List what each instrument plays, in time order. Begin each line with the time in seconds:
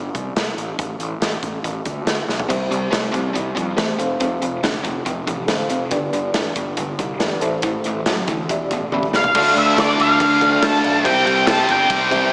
0.15 picked electric bass C2, kick, closed hi-hat
0.35 picked electric bass C2, snare, closed hi-hat
0.56 picked electric bass A1, closed hi-hat
0.78 picked electric bass A1, kick, closed hi-hat
0.98 picked electric bass A1, closed hi-hat
1.20 picked electric bass A1, snare, closed hi-hat
1.42 picked electric bass A1, kick, closed hi-hat
1.64 picked electric bass A1, kick, closed hi-hat
1.85 picked electric bass D2, kick, closed hi-hat
2.05 picked electric bass D2, snare, closed hi-hat
2.27 picked electric bass B1, snare
2.40 floor tom
2.48 picked electric bass C2, distorted electric guitar C3 G3, reed electric piano G4 C5 E5, kick, closed hi-hat, crash
2.70 picked electric bass C2, distorted electric guitar C3 G3, closed hi-hat
2.91 picked electric bass C2, distorted electric guitar C3 A3, snare, closed hi-hat
3.12 picked electric bass C2, distorted electric guitar C3 G3, kick, closed hi-hat
3.34 picked electric bass C2, distorted electric guitar C3 G3, kick, closed hi-hat
3.55 picked electric bass F2, distorted electric guitar C3 G3, kick, closed hi-hat
3.76 picked electric bass E2, distorted electric guitar C3 A3, reed electric piano G4 C5 E5, snare, closed hi-hat
3.98 picked electric bass F1, distorted electric guitar F2 C3, reed electric piano A4 C5 F5, closed hi-hat
4.20 picked electric bass F1, distorted electric guitar F2 C3, kick, closed hi-hat
4.41 picked electric bass F1, distorted electric guitar F2 C3, closed hi-hat
4.62 picked electric bass F1, distorted electric guitar F2 D3, snare, closed hi-hat
4.83 picked electric bass F1, distorted electric guitar F2 C3, kick, closed hi-hat
5.05 picked electric bass F1, distorted electric guitar F2 C3, kick, closed hi-hat
5.27 picked electric bass A1, distorted electric guitar F2 C3, kick, closed hi-hat
5.47 picked electric bass A1, distorted electric guitar F2 D3, reed electric piano A4 C5 F5, snare, closed hi-hat
5.69 picked electric bass F1, distorted electric guitar F2 C3, closed hi-hat
5.90 picked electric bass G1, distorted electric guitar G2 D3, reed electric piano G4 B4 D5, kick, closed hi-hat
6.12 picked electric bass G1, distorted electric guitar G2 D3, closed hi-hat
6.33 picked electric bass G1, distorted electric guitar G2 E3, snare, closed hi-hat
6.56 picked electric bass G1, distorted electric guitar G2 D3, kick, closed hi-hat
6.77 picked electric bass G1, distorted electric guitar G2 D3, kick, closed hi-hat
6.99 picked electric bass C2, distorted electric guitar G2 D3, kick, closed hi-hat
7.19 picked electric bass G1, distorted electric guitar G2 E3, reed electric piano G4 B4 D5, snare, closed hi-hat
7.40 picked electric bass A1, distorted electric guitar A2 E3, reed electric piano A4 C5 E5, closed hi-hat
7.62 picked electric bass A1, distorted electric guitar A2 E3, kick, closed hi-hat
7.84 picked electric bass A1, distorted electric guitar A2 E3, closed hi-hat
8.06 picked electric bass A1, distorted electric guitar A2 F#3, snare, closed hi-hat
8.28 picked electric bass D2, distorted electric guitar A2 E3, kick, closed hi-hat
8.49 picked electric bass E1, distorted electric guitar E2 B2, reed electric piano G4 D5 E5, kick, closed hi-hat
8.70 picked electric bass A1, distorted electric guitar E2 B2, kick, closed hi-hat
8.92 picked electric bass A1, distorted electric guitar E2 C#3, reed electric piano G4 D5 E5 B5, high tom
9.03 kick
9.13 picked electric bass C2, distorted electric guitar E2 B2, lead electric guitar F5, snare
9.24 floor tom
9.35 picked electric bass D2, distorted electric guitar D3 A3 D4, reed electric piano A4 D5 F5, kick, crash
9.55 picked electric bass D2, lead electric guitar E5, crash
9.76 picked electric bass D2, lead electric guitar D5, snare, crash
9.99 picked electric bass D2, lead electric guitar F5, crash
10.20 picked electric bass D2, kick, crash
10.41 reed electric piano A4 D5 F5, kick, crash
10.62 picked electric bass D2, lead electric guitar A5, snare, crash
10.83 picked electric bass B1, reed electric piano A4 D5 F5, crash
11.04 picked electric bass C2, distorted electric guitar C3 G3 C4, reed electric piano G4 C5 E5, lead electric guitar G5, kick, crash
11.26 picked electric bass C2, lead electric guitar G5, crash
11.47 picked electric bass C2, lead electric guitar A5, snare, crash
11.68 picked electric bass G1, lead electric guitar G5, crash
11.90 picked electric bass C2, kick, crash
12.11 picked electric bass C2, reed electric piano G4 C5 E5, kick, crash